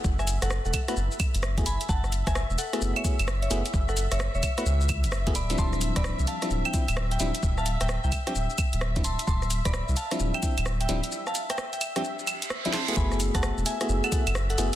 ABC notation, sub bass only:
X:1
M:4/4
L:1/16
Q:"Swing 16ths" 1/4=130
K:F#m
V:1 name="Sub bass" clef=bass
F,,,3 F,,,2 E,,, z2 F,,, z2 F,,,3 F,,, z | F,,,3 F,,,2 E,,, z2 F,,, z2 F,,,3 F,,, z | F,,,3 F,,,2 E,,, z2 C,,3 F,,,3 D,,,2 | D,,,3 D,,,2 =C,, z2 D,,, z2 D,,,3 D,,, z |
D,,,3 D,,,2 =C,, z2 D,,, z2 D,,,3 D,,, z | D,,,3 D,,,2 =C,, z2 D,,, z2 D,,,3 D,,, z | z16 | F,,,3 F,,,2 E,,, z2 F,,, z2 F,,,3 F,,, z |]